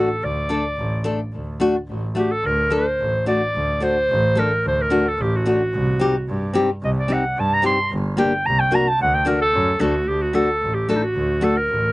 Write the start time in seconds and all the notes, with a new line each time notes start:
Already playing: A4
0.22 D2 D5
0.49 A3 D4 A4
0.77 A1
1.04 A3 D4 A4
1.33 D2
1.60 A3 D4 F#4
1.88 A1
2.15 A3 D4 F#4 G4
2.31 A4
2.43 D2 A#4
2.70 A3 D4 A4 C5
2.98 A1
3.26 A3 D4 F#4 D5
3.54 D2
3.80 A3 D4 F#4 C5
4.09 A1
4.35 A3 D4 A4 A#4
4.63 D2 C5
4.82 A#4
4.90 A3 D4 F#4
5.08 A4
5.18 A1 G4
5.36 F#4
5.46 A3 D4 F#4
5.73 C2
5.99 C4 D#4 G4
6.28 G2
6.54 C4 D#4 G4
6.82 C2 D#5
6.99 D5
7.08 C4 D#4 G4
7.13 F#5
7.37 G2 A5
7.54 A#5
7.62 C4 D#4 G4 C6
7.91 G1
8.17 A#3 D4 G4 G5
8.45 C2 A#5
8.60 G5
8.71 A#3 D4 F#4 A#5
8.88 A5
8.99 D2 F#5
9.14 G5
9.25 A3 D4 F#4 A#4
9.42 A4
9.53 F#2
9.79 D2 A3 D4 F#4 A4
10.07 D2 G4
10.22 F#4
10.33 A3 D4 F#4 A4
10.61 A1
10.74 G4
10.89 A3 D4 F#4 A4
10.96 D#4
11.03 F#4
11.14 D2
11.41 A3 D4 F#4 A4
11.57 A#4
11.68 A1